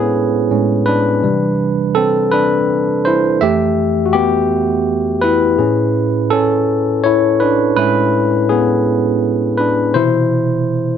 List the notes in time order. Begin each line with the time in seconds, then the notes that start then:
Already playing: A2 G#3 B3 C#4 D4 E4 G#4 B4 C5 C#5
0.51 A2 G#3 C#4
0.86 D4 B4
1.23 C3 E3 G3
1.95 C4 A4
2.32 D4 B4
3.05 E4 C5
3.41 F2 E3 A3 G4 E5
4.06 F#4
4.13 B3 G4
5.21 E4 B4
5.58 A2 C#4 G#4
6.30 C#4 A4
7.04 E4 C#5
7.40 D4 B4
7.76 A2 G#3 C#4 E4 B4
8.49 B3 G#4
9.58 D4 B4
9.94 B2 C3 E3 E4 C5